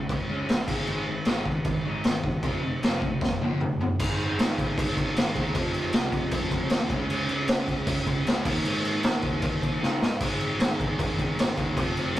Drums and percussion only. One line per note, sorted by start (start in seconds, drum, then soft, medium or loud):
0.09 kick loud
0.09 crash medium
0.49 snare loud
0.49 crash medium
0.68 kick loud
0.68 crash loud
0.87 crash medium
1.25 snare loud
1.25 crash medium
1.45 kick medium
1.64 kick loud
1.64 crash medium
2.04 snare loud
2.04 crash medium
2.24 kick medium
2.43 kick loud
2.43 crash medium
2.83 snare loud
2.83 crash medium
3.02 kick loud
3.21 kick loud
3.21 snare medium
3.41 high tom medium
3.61 mid tom medium
3.81 floor tom medium
4.00 kick loud
4.00 crash loud
4.00 crash medium
4.20 crash medium
4.39 snare loud
4.39 crash medium
4.58 kick loud
4.58 crash medium
4.78 kick loud
4.78 crash loud
4.97 kick loud
4.97 crash medium
5.16 snare loud
5.16 crash loud
5.35 kick loud
5.35 crash medium
5.55 kick loud
5.55 crash medium
5.74 crash medium
5.92 snare loud
5.92 crash medium
6.12 kick medium
6.12 crash medium
6.31 kick loud
6.31 crash loud
6.51 kick medium
6.51 crash medium
6.69 snare loud
6.69 crash medium
6.90 kick loud
6.90 crash medium
7.10 crash medium
7.29 crash medium
7.47 snare loud
7.47 crash loud
7.68 kick medium
7.68 crash medium
7.87 kick loud
7.87 crash loud
8.06 kick loud
8.06 crash medium
8.27 snare loud
8.27 crash medium
8.45 kick loud
8.45 crash loud
8.65 crash loud
8.85 crash medium
9.03 snare loud
9.03 crash medium
9.22 kick loud
9.22 crash medium
9.42 kick loud
9.42 crash medium
9.62 kick medium
9.62 crash medium
9.83 snare medium
10.02 snare loud
10.20 kick loud
10.20 crash loud
10.40 crash medium
10.60 snare loud
10.60 crash medium
10.80 kick loud
10.80 crash medium
10.99 kick loud
10.99 crash loud
11.19 kick medium
11.19 crash medium
11.39 snare loud
11.39 crash medium
11.57 kick medium
11.57 crash medium
11.77 kick loud
11.77 crash loud
11.97 crash medium
12.16 crash medium